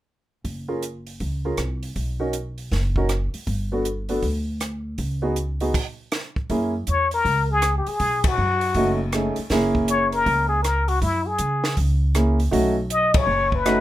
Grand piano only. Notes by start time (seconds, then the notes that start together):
0.68 C#4 F4 G#4 A#4
1.45 C#4 F4 G#4 A#4
2.20 C#4 D#4 F#4 A#4
2.97 C#4 D#4 F#4 A#4
3.72 B3 D4 F#4 A4
4.09 B3 D4 F#4 A4
5.22 B3 D#4 F#4 G#4
5.61 B3 D#4 F#4 G#4
6.50 A#3 C#4 E4 G#4
8.76 A3 C#4 D#4 F#4
9.14 A3 C#4 D#4 G#4
9.51 A#3 C#4 E4 G#4
12.15 A#3 C#4 E4 G#4
12.51 A3 C#4 D#4 F#4
13.65 A3 C#4 D#4 F#4